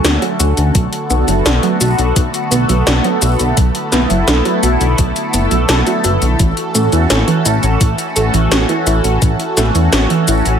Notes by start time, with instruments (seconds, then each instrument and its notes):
Already playing: analog synth pad D3 A3 C#4 F#4 A4
0.04 analog synth bass D2, synth arpeggio sound D4, snare, closed hi-hat, shaker
0.22 synth arpeggio sound F#3, closed hi-hat
0.40 analog synth bass D2, synth arpeggio sound F#4, closed hi-hat, shaker
0.57 analog synth bass D2, closed hi-hat, shaker
0.75 analog synth bass B1, synth arpeggio sound F#3, analog synth pad B3 F#4, kick, closed hi-hat, shaker
0.93 closed hi-hat
1.10 analog synth bass B1, synth arpeggio sound B3, shaker
1.28 analog synth bass F#1, synth arpeggio sound F#3, closed hi-hat, shaker
1.46 analog synth bass B1, synth arpeggio sound D4, snare, closed hi-hat, shaker
1.63 synth arpeggio sound F#3, closed hi-hat
1.81 analog synth bass B1, synth arpeggio sound F#4, closed hi-hat, shaker
1.99 analog synth bass B1, closed hi-hat, shaker
2.16 analog synth bass B1, synth arpeggio sound F#3, kick, closed hi-hat, shaker
2.34 closed hi-hat, shaker
2.51 analog synth bass B1, synth arpeggio sound B3, closed hi-hat, shaker
2.69 analog synth bass B1, synth arpeggio sound F#3, closed hi-hat, shaker
2.87 analog synth bass B1, synth arpeggio sound D4, snare, closed hi-hat, shaker
3.04 synth arpeggio sound F#3, closed hi-hat
3.22 analog synth bass B1, synth arpeggio sound F#4, closed hi-hat, shaker
3.39 analog synth bass B1, closed hi-hat, shaker
3.57 analog synth bass B1, synth arpeggio sound F#3, analog synth pad E4, kick, closed hi-hat, shaker
3.75 closed hi-hat
3.92 analog synth bass B1, synth arpeggio sound B3, snare, shaker
4.10 analog synth bass F#1, synth arpeggio sound F#3, closed hi-hat, shaker
4.28 analog synth bass B1, synth arpeggio sound D4, snare, closed hi-hat, shaker
4.45 synth arpeggio sound F#3, closed hi-hat
4.63 analog synth bass B1, synth arpeggio sound F#4, closed hi-hat, shaker
4.81 analog synth bass B1, closed hi-hat, shaker
4.98 analog synth bass B1, synth arpeggio sound F#3, kick, closed hi-hat, shaker
5.16 closed hi-hat, shaker
5.34 analog synth bass F#1, synth arpeggio sound B3, closed hi-hat, shaker
5.51 analog synth bass B1, synth arpeggio sound F#3, closed hi-hat, shaker
5.69 analog synth bass B1, synth arpeggio sound D4, snare, closed hi-hat, shaker
5.87 synth arpeggio sound F#3, closed hi-hat, shaker
6.04 analog synth bass F#1, synth arpeggio sound F#4, closed hi-hat, shaker
6.22 analog synth bass B1, closed hi-hat, shaker
6.39 analog synth bass A1, synth arpeggio sound E3, analog synth pad E3 C#4 F#4, kick, closed hi-hat, shaker
6.57 closed hi-hat
6.75 analog synth bass A1, synth arpeggio sound A3, shaker
6.92 analog synth bass E2, synth arpeggio sound E3, closed hi-hat, shaker
7.10 analog synth bass A1, synth arpeggio sound C#4, snare, closed hi-hat, shaker
7.28 synth arpeggio sound E3, closed hi-hat
7.46 analog synth bass A1, synth arpeggio sound E4, closed hi-hat, shaker
7.63 analog synth bass A1, closed hi-hat, shaker
7.81 analog synth bass A1, synth arpeggio sound E3, kick, closed hi-hat, shaker
7.98 closed hi-hat, shaker
8.16 analog synth bass A1, synth arpeggio sound A3, closed hi-hat, shaker
8.34 analog synth bass A1, synth arpeggio sound E3, closed hi-hat, shaker
8.51 analog synth bass A1, synth arpeggio sound C#4, snare, closed hi-hat, shaker
8.69 synth arpeggio sound E3, closed hi-hat
8.87 analog synth bass A1, synth arpeggio sound E4, closed hi-hat, shaker
9.04 analog synth bass A1, closed hi-hat, shaker
9.22 analog synth bass A1, synth arpeggio sound E3, kick, closed hi-hat, shaker
9.40 closed hi-hat
9.57 analog synth bass A1, synth arpeggio sound A3, snare, shaker
9.75 analog synth bass E2, synth arpeggio sound E3, closed hi-hat, shaker
9.93 analog synth bass A1, synth arpeggio sound C#4, snare, closed hi-hat, shaker
10.10 synth arpeggio sound E3, closed hi-hat
10.28 analog synth bass A1, synth arpeggio sound E4, closed hi-hat, shaker
10.45 analog synth bass A1, closed hi-hat, shaker